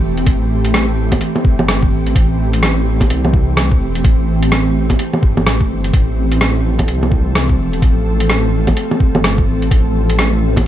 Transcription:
Already playing: ambient pad E3 A3 C4 G4
0.03 detuned saw bass E1
0.17 closed hi-hat
0.26 detuned saw bass A1, kick, closed hi-hat
0.65 closed hi-hat
0.74 cross-stick, closed hi-hat
1.12 kick, closed hi-hat, low bongo
1.21 closed hi-hat
1.36 low bongo
1.44 detuned saw bass G1, kick
1.59 low bongo
1.68 cross-stick, closed hi-hat
1.82 kick
1.92 detuned saw bass A1
2.07 closed hi-hat
2.15 detuned saw bass A1, kick, closed hi-hat
2.53 closed hi-hat
2.63 cross-stick, closed hi-hat
3.01 kick, closed hi-hat, low bongo
3.10 detuned saw bass C2, closed hi-hat
3.25 low bongo
3.33 kick
3.57 cross-stick, closed hi-hat
3.71 kick
3.81 detuned saw bass E1
3.95 closed hi-hat
4.04 detuned saw bass A1, kick, closed hi-hat
4.43 closed hi-hat
4.52 cross-stick, closed hi-hat
4.90 kick, closed hi-hat, low bongo
4.99 closed hi-hat
5.13 low bongo
5.23 detuned saw bass G1, kick
5.37 low bongo
5.46 detuned saw bass A1, cross-stick, closed hi-hat
5.60 kick
5.70 detuned saw bass G1
5.84 closed hi-hat
5.93 detuned saw bass A1, ambient pad F3, kick, closed hi-hat
6.08 ambient pad A3 A4
6.32 closed hi-hat
6.41 cross-stick, closed hi-hat
6.79 kick, closed hi-hat, low bongo
6.88 detuned saw bass C2, closed hi-hat
7.03 low bongo
7.11 kick
7.35 cross-stick, closed hi-hat
7.49 kick
7.59 detuned saw bass E1
7.73 closed hi-hat
7.82 detuned saw bass A1, kick, closed hi-hat
8.20 closed hi-hat
8.30 cross-stick, closed hi-hat
8.67 kick, closed hi-hat, low bongo
8.77 closed hi-hat
8.91 low bongo
9.00 detuned saw bass G1, kick
9.15 low bongo
9.24 cross-stick, closed hi-hat
9.38 kick
9.48 detuned saw bass A1
9.62 closed hi-hat
9.71 detuned saw bass A1, kick, closed hi-hat
10.10 closed hi-hat
10.19 cross-stick, closed hi-hat
10.56 kick, closed hi-hat, low bongo

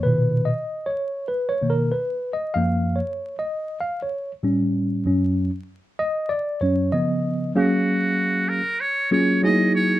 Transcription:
0.03 tine electric piano A#2 B2 D#3 B4
0.45 tine electric piano D#5
0.86 tine electric piano C#5
1.28 tine electric piano B4
1.49 tine electric piano C#5
1.62 tine electric piano B2 D#3 A#3
1.70 tine electric piano A#4
1.92 tine electric piano B4
2.33 tine electric piano D#5
2.54 tine electric piano F#2 F3 A#3 F5
2.96 tine electric piano C#5
3.39 tine electric piano D#5
3.80 tine electric piano F5
4.03 tine electric piano C#5
4.43 tine electric piano A2 G3 C#4
5.05 tine electric piano F#2 F#3 C#4
5.99 tine electric piano D#5
6.29 tine electric piano D5
6.61 tine electric piano F#2 F#3 C#4 C#5
6.92 tine electric piano C#3 F3 B3 D#5
7.55 tine electric piano F#3 A#3 C#4 G#4 F5, muted trumpet F#4
8.49 muted trumpet A#4
8.80 muted trumpet C#5
9.11 tine electric piano F#3 A#3 C#4 F4 G#4, muted trumpet C#5
9.43 tine electric piano F#3 A3 D#4 E4 G#4, muted trumpet D#5
9.49 tine electric piano A#3
9.75 muted trumpet C#5

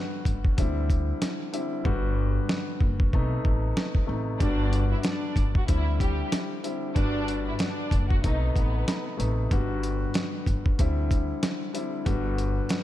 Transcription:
Already playing: grand piano D3 G3 B3 F#4
0.25 upright bass G1, kick, closed hi-hat
0.45 kick
0.57 upright bass D2, grand piano D3 G3 C4 E4, kick, closed hi-hat
0.90 kick, closed hi-hat
1.22 snare, closed hi-hat
1.52 grand piano D3 G3 C4 E4, closed hi-hat
1.84 upright bass G1, grand piano D3 G3 B3 F#4, kick
2.49 snare
2.81 upright bass F#1, kick
3.00 kick
3.13 upright bass B1, grand piano C3 A3 B3 D#4, kick
3.45 upright bass A1, kick
3.77 snare
3.95 kick
4.06 upright bass A1, grand piano C3 A3 B3 D#4
4.38 upright bass G1, grand piano D3 G3 B3 F#4, violin section D4 D5, kick, closed hi-hat
4.73 closed hi-hat
4.91 violin section E4 E5
5.03 violin section D4 D5, snare, closed hi-hat
5.36 upright bass G1, kick, closed hi-hat
5.55 violin section F#4 F#5, kick
5.67 upright bass D2, grand piano D3 G3 C4 E4, violin section E4 E5, kick, closed hi-hat
6.00 violin section G3 G4, kick, closed hi-hat
6.32 snare, closed hi-hat
6.62 grand piano D3 G3 C4 E4, closed hi-hat
6.94 upright bass G1, grand piano D3 G3 B3 F#4, violin section D4 D5, kick, closed hi-hat
7.28 closed hi-hat
7.47 violin section E4 E5
7.59 violin section D4 D5, snare, closed hi-hat
7.91 upright bass F#1, kick, closed hi-hat
8.08 violin section F#4 F#5, kick
8.23 upright bass B1, grand piano C3 A3 B3 D#4, violin section D#4 D#5, kick, closed hi-hat
8.56 upright bass A1, violin section B3 B4, kick, closed hi-hat
8.88 snare, closed hi-hat
9.17 upright bass A1, grand piano C3 A3 B3 D#4, closed hi-hat
9.51 upright bass G1, grand piano D3 G3 B3 F#4, kick, closed hi-hat
9.83 closed hi-hat
10.14 snare, closed hi-hat
10.46 upright bass G1, kick, closed hi-hat
10.66 kick
10.78 upright bass D2, grand piano D3 G3 C4 E4, kick, closed hi-hat
11.11 kick, closed hi-hat
11.43 snare, closed hi-hat
11.73 grand piano D3 G3 C4 E4, closed hi-hat
12.05 upright bass G1, grand piano D3 G3 B3 F#4, kick, closed hi-hat
12.38 closed hi-hat
12.69 snare, closed hi-hat

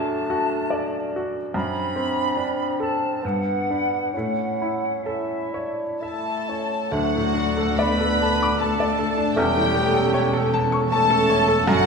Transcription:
Already playing: grand piano F#2 F#3 D4, bassoon A3, clarinet D4, flute section A5
0.30 grand piano F#4
0.70 grand piano D5
1.16 grand piano F#4
1.54 grand piano F#2, bassoon C4, clarinet D4, flute section B5
1.96 grand piano C4
2.37 grand piano D4
2.80 grand piano A4, flute section A5
3.22 grand piano G2, bassoon B3, clarinet D4, flute section F#5
3.71 grand piano D4 B4
4.13 bassoon C#4, clarinet E4, flute section F#5
4.17 grand piano A2
4.62 grand piano E4
5.04 bassoon C#4, clarinet E4, grand piano A4, flute section E5
5.52 bassoon D4, grand piano C#5
6.01 french horn section A3, bassoon E4, trumpet section A4, grand piano E5, violin section A5, flute section A5
6.49 bassoon C#4, grand piano C#5
6.91 grand piano D2, cello section D2, double bass section D2, french horn section F#3, bassoon A3, viola section D4 A4, clarinet D4, trumpet section F#4, violin section F#5, flute section F#5
7.16 grand piano A2
7.34 grand piano D4
7.57 grand piano A4
7.77 french horn section B3, trumpet section B4, grand piano D5, violin section B5, flute section B5
8.00 grand piano A4
8.22 grand piano A5
8.43 grand piano D6
8.58 french horn section A3, viola section D4 A4, trumpet section A4, violin section A5, flute section A5, grand piano A5
8.80 grand piano D5
8.99 grand piano A4
9.18 grand piano D4
9.36 double bass section E1, cello section E2, grand piano E2, french horn section G3, bassoon A3, viola section C#4 A4, clarinet C#4, trumpet section G4, violin section G5, flute section G5
9.57 grand piano E3
9.76 grand piano A3
9.94 grand piano A4
10.14 grand piano C#5
10.33 grand piano A4
10.54 grand piano A5
10.72 grand piano C#6
10.89 french horn section A3, viola section C#4 A4, trumpet section A4, violin section A5, flute section A5, grand piano A5
11.10 grand piano A4
11.30 grand piano C#5
11.48 grand piano A4
11.66 double bass section F#1, cello section F#2, grand piano F#2, french horn section F#3, bassoon A3, viola section D4 A4, clarinet D4, trumpet section F#4, violin section F#5, flute section F#5

